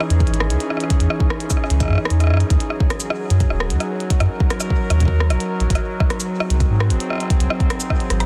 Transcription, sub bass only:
0.10 E2
0.30 G#1
0.50 C#2
1.00 E2
1.70 C#2
1.90 F#2
2.10 E2
2.30 F#2
2.50 D#2
3.30 F#2
3.50 D#1
3.70 D#2
4.20 F#2
4.90 D#2
5.30 A#1
5.60 A#1
5.70 G#1
6.50 C2
6.70 G#2
6.90 G#1
7.40 C2
8.10 G#1

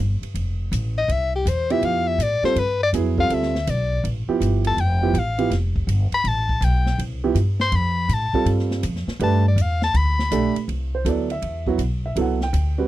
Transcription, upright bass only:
Already playing: G1
0.21 muted upright bass stroke
0.34 F1
0.72 A1
1.08 C2
1.46 E2
1.82 F2
2.18 A2
2.43 muted upright bass stroke
2.56 G2
2.93 F2
3.30 D2
3.67 B1
4.04 A1
4.28 muted upright bass stroke
4.40 G1
4.77 F1
5.13 A1
5.50 F1
5.87 G1
6.12 muted upright bass stroke
6.24 A1
6.61 B1
6.98 C2
7.35 G2
7.72 F2
8.09 A2
8.33 muted upright bass stroke
8.45 G2
8.83 F2
9.07 muted upright bass stroke
9.20 G2
9.56 E2
9.94 D2
10.31 B1
10.55 muted upright bass stroke
10.68 C2
11.05 D2
11.42 E2
11.78 B1
12.16 C2
12.53 D2

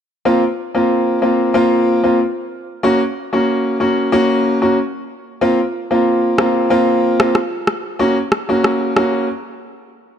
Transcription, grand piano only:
0.25 A#3 C4 F4
0.75 A#3 C4 F4
1.22 A#3 C4 F4
1.54 A#3 C4 F4
2.03 A#3 C4 F4
2.83 A#3 C#4 F#4
3.33 A#3 C#4 F#4
3.80 A#3 C#4 F#4
4.12 A#3 C#4 F#4
4.62 A#3 C#4 F#4
5.41 A#3 C4 F4
5.91 A#3 C4 F4
6.38 A#3 C4 F4
6.70 A#3 C4 F4
7.20 A#3 C4 F4
7.99 A#3 C#4 F#4
8.49 A#3 C#4 F#4
8.96 A#3 C#4 F#4

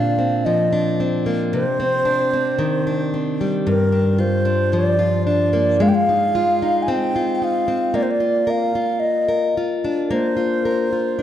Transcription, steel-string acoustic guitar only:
Already playing: A#2 C4 D4
0.18 C4
0.46 F3
0.72 D4
1.00 C4
1.26 A#3
1.53 C3
1.80 C4
2.05 D4
2.33 C4
2.59 D#3
2.87 D4
3.14 C4
3.41 G3
3.67 G2
3.92 D4
4.18 F4
4.45 D4
4.73 F3
4.99 F4
5.27 D4
5.53 A#3
5.80 G#3
6.09 D#4
6.35 F4
6.62 D#4
6.88 C4
7.16 F4
7.42 D#4
7.68 C4
7.94 A#3
8.20 F4
8.47 A#4
8.75 F4
9.28 A#4
9.57 F4
9.84 D4
10.11 A#3
10.37 F4
10.65 A#4
10.93 F4
11.19 D4

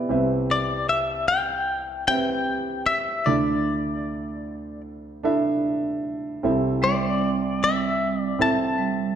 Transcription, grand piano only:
Already playing: B3 E4 G4 D5
0.09 C2 C3 C4 G4 B4 E5
2.08 C4 G4 B4 E5
3.26 D2 D3 D4 E4 A4 E5
5.23 D4 E4 A4 E5
6.43 C2 C3 C4 E4 A4 E5
8.39 C4 E4 A4 E5

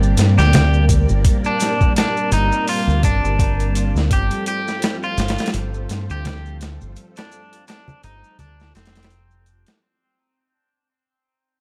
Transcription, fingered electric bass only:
Already playing: G1
0.17 G2
0.38 D2
1.09 G1
2.32 G1
2.87 D2
3.04 G1
3.24 G1
3.95 D2
4.11 G1
5.17 G1
5.54 G1
5.90 G2
6.10 D2
6.82 G1
8.04 G1
8.40 D2
8.75 F1

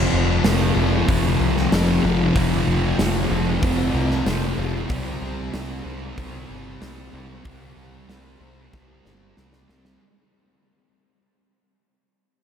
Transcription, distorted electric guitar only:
Already playing: F2 C3 F3 C4
0.44 F2 C3 F3
0.75 C3 F3
1.07 F2 C3 F3
1.71 F2 C3 F3
2.03 C3 F3
2.35 F2 C3 F3
2.99 F2 C3 F3
3.30 C3 F3
3.61 F2 C3 F3
4.25 F2 C3 F3
4.57 C3 F3
4.89 C3 G3 C4
5.53 C3 G3 C4
5.85 G3 C4
6.16 C3 G3 C4
6.81 C3 G3 C4
7.13 G3 C4
7.44 C3 G3 C4
8.08 C3 G3 C4
8.41 G3 C4
8.72 C3 G3 C4
9.37 C3 G3 C4
9.68 G3 C4

